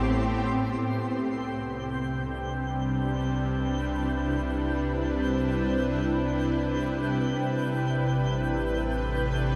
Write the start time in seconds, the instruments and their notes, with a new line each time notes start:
Already playing: sub bass A1, ambient pad A2 A3 B3 C4 G4, synth texture C6
0.81 sub bass C2, synth drone C3, ambient pad C3, synth texture G6
0.94 ambient pad G3
1.67 ambient pad D4
2.04 ambient pad B4
2.79 ambient pad E4
7.39 sub bass A1, ambient pad A2
7.73 ambient pad A3
7.83 ambient pad G4
8.28 ambient pad C4